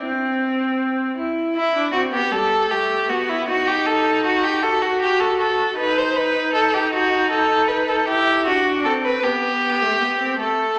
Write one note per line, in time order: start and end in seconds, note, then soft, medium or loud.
0.03 1.16 C4 medium
1.18 1.74 E4 medium
1.56 1.92 E4 medium
1.75 1.93 D4 medium
1.93 2.12 C4 medium
1.93 2.01 F#4 medium
2.13 2.34 B3 medium
2.13 2.34 G4 medium
2.32 2.69 G3 medium
2.32 2.72 A4 medium
2.70 3.10 A3 medium
2.70 3.11 G4 medium
3.09 3.48 B3 medium
3.09 3.31 F#4 medium
3.29 3.48 E4 medium
3.47 4.63 D#4 medium
3.47 3.69 F#4 medium
3.68 3.88 G4 medium
3.87 4.24 A4 medium
4.25 4.46 F#4 medium
4.44 4.64 G4 medium
4.62 5.77 F#4 medium
4.62 4.84 A4 medium
4.82 5.01 F#4 medium
5.01 5.22 G4 medium
5.20 5.39 A4 medium
5.40 5.77 A4 medium
5.78 8.04 D#4 medium
5.78 6.00 B4 medium
5.98 6.18 C5 medium
6.17 6.54 B4 medium
6.55 6.76 A4 medium
6.74 6.93 G4 medium
6.93 7.30 F#4 medium
7.31 7.70 A4 medium
7.69 7.90 B4 medium
7.89 8.08 A4 medium
8.08 8.48 E4 medium
8.08 8.45 G4 medium
8.46 8.87 D4 medium
8.46 8.84 F#4 medium
8.85 9.24 C4 medium
8.85 8.93 A4 medium
9.05 9.25 B4 medium
9.23 9.84 B3 medium
9.23 10.39 G4 medium
9.82 10.03 A3 medium
10.02 10.20 B3 medium
10.20 10.39 C4 medium
10.40 10.79 A3 medium
10.40 10.79 A4 medium